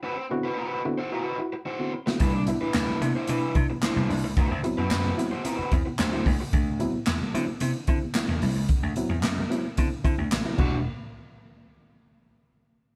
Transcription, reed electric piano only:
\new Staff \with { instrumentName = "Reed electric piano" } { \time 4/4 \key d \major \tempo 4 = 111 r8 <d b c' e' fis'>16 <e' fis'>16 r8 <d b c' e' fis'>16 r16 <e' fis'>16 r16 <e' fis'>16 r8 <d b c' e' fis'>16 r16 <d b c' e' fis'>16 | <c g>16 r16 <b d' e'>16 <d' e'>16 r8 <b d' e'>16 r16 <d' e'>16 <c g>16 <d' e'>16 r16 <d' e'>16 <c g>16 <d' e'>16 r16 | d16 r16 <fis b c' e'>16 <c' e'>16 r8 <fis b c' e'>16 r16 <c' e'>16 d16 <c' e'>16 r16 d16 <fis b c' e'>16 <c' e'>16 r16 | d16 r16 <fis b c' e'>16 <c' e'>16 r8 <fis b c' e'>16 r16 <c' e'>16 d16 <c' e'>16 r16 <c' e'>16 d16 <c' e'>16 r16 |
d16 r16 <fis b c' e'>16 <c' e'>16 r8 <fis b c' e'>16 r16 <c' e'>16 d16 <c' e'>16 r8 <fis b c' e'>16 <g d' fis'>8 | r1 | }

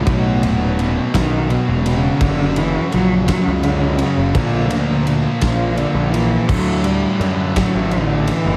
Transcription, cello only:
\new Staff \with { instrumentName = "Cello" } { \clef bass \time 6/8 \key d \major \tempo 4. = 56 a,4 r8 dis8 b,8 cis8 | d8 e8 fis8 fis8 d8 cis8 | d4 r8 f8 d8 e8 | fis8 g8 r8 fis8 d8 e8 | }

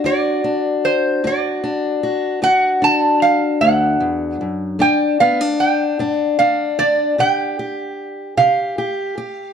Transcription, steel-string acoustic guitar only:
\new Staff \with { instrumentName = "Steel-string acoustic guitar" } { \time 12/8 \key d \mixolydian \tempo 4. = 50 << { fis'8 d'4 fis'8 d'8 fis'8 fis'8 d'2~ d'8 | d'8 b16 d'8. d'8 d'8 d'8 g'8 g'4 g'8 g'8 g'8 | } \\ { d,4 r8 d,4 r8 d,4 r8 d,8 e,8 fis,8 | g,4 r8 g,4 r8 c4 r8 c4 r8 | } >> }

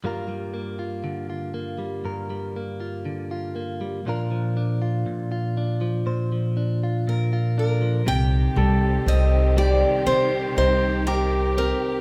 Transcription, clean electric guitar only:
\new Staff \with { instrumentName = "Clean electric guitar" } { \time 4/4 \key g \minor \tempo 4 = 60 << { <g bes f' bes'>8 bes16 f'8 f'16 bes8 bes'8 bes16 f'8 f'16 bes8 | <f d' f' bes'>8 d'16 f'8 f'16 d'8 c''8 d'16 f'8 f'16 d'8 | r4 c'4 c'8 ees'8 g'8 c'8 | } \\ { g,16 g8. d8. g16 g,16 g8. d8. g16 | bes,16 f8. bes,8. f16 bes,16 f8. bes,8. f16 | c8 g4 g2~ g8 | } >> }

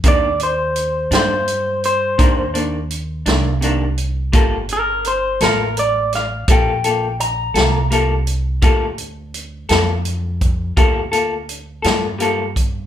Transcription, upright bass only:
\new Staff \with { instrumentName = "Upright bass" } { \clef bass \time 12/8 \key g \minor \tempo 4. = 56 ees,4. g,4. ees,4. c,4. | g,,4. a,,4. bes,,4. c,4. | d,4. f,4. d,4. g,4. | }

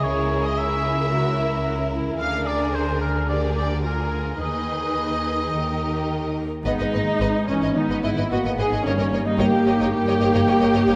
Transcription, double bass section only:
\new Staff \with { instrumentName = "Double bass section" } { \clef bass \time 4/4 \key gis \minor \tempo 4 = 110 cis,1 | d,1 | dis,2 dis,4.~ dis,16 r16 | gis,,16 gis,,16 gis,,16 r16 gis,,16 r16 gis,,16 gis,,16 r16 gis,,16 gis,,16 gis,,16 gis,,16 gis,,16 gis,,16 gis,,16 |
g,,16 g,,16 g,,16 r16 g,,16 r16 g,,16 g,,16 r16 g,,16 g,,16 g,,16 g,,16 g,,16 g,,16 g,,16 | }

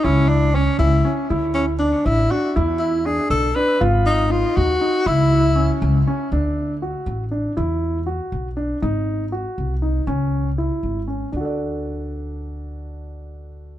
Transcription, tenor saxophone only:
\new Staff \with { instrumentName = "Tenor saxophone" } { \time 5/8 \key d \lydian \tempo 4 = 120 cis'8 d'8 cis'8 e'8. r16 | r8 cis'8 d'8 e'8 fis'8 | r8 e'8 gis'8 a'8 b'8 | r8 dis'8 f'8 fis'4 |
e'4. r4 | r2 r8 | r2 r8 | r2 r8 |
r2 r8 | r2 r8 | r2 r8 | }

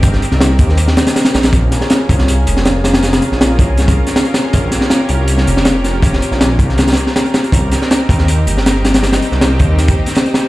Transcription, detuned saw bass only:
\new Staff \with { instrumentName = "Detuned saw bass" } { \clef bass \time 4/4 \key bes \dorian \tempo 4 = 160 g,,8 r16 c,8. ees,4 r4 bes,,8 | bes,,8 r4 c,4 f,,4.~ | f,,8 r16 bes,,8. c,4 r4. | bes,,8 r4 c,4 f,,4.~ |
f,,8 r16 bes,,8. c,4 r4. | c,8 r4 ees,4 g,,4.~ | g,,8 r16 c,8. ees,4 r4. | }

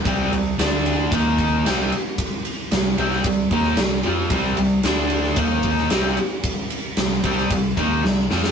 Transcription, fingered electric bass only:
\new Staff \with { instrumentName = "Fingered electric bass" } { \clef bass \time 4/4 \key c \minor \tempo 4 = 113 c,8 c,8 d,4 ees,4 c,8 r8 | r4 c,8 c,8 c,8 ees,8 c,8 f,8 | c,8 c,8 d,4 ees,4 c,8 r8 | r4 c,8 c,8 c,8 ees,8 c,8 f,8 | }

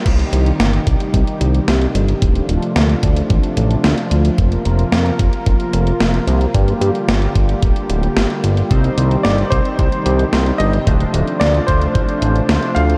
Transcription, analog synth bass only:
\new Staff \with { instrumentName = "Analog synth bass" } { \clef bass \time 4/4 \key c \dorian \tempo 4 = 111 c,8 c,8 g,,8 c,8 c,8 c,8 c,8 g,,8 | d,,8 d,,8 d,8 d,8 a,,8 a,,8 d,8 d,8 | f,,8 f,,8 f,8 f,,8 f,,8 f,,8 f,,8 c,8 | g,8 g,8 g,,8 g,,8 d,,8 d,,8 g,,8 g,,8 |
c,8 c,8 g,,8 c,8 c,8 c,8 c,8 g,,8 | d,,8 d,,8 d,8 d,8 a,,8 a,,8 d,8 d,8 | }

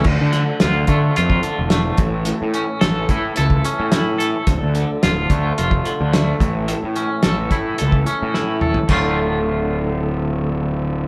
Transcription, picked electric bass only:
\new Staff \with { instrumentName = "Picked electric bass" } { \clef bass \time 4/4 \key d \minor \tempo 4 = 108 d,16 d8 r16 d,8 d8 f,8 r16 e,,8. a,,8~ | a,,16 a,8 r16 a,,8 a,8 cis,8 r16 a,4~ a,16 | d,,16 d,8 r16 d,,8 d,8 f,,8 r16 d,8. a,,8~ | a,,16 a,8 r16 a,,8 a,8 cis,8 r16 a,4~ a,16 |
d,,1 | }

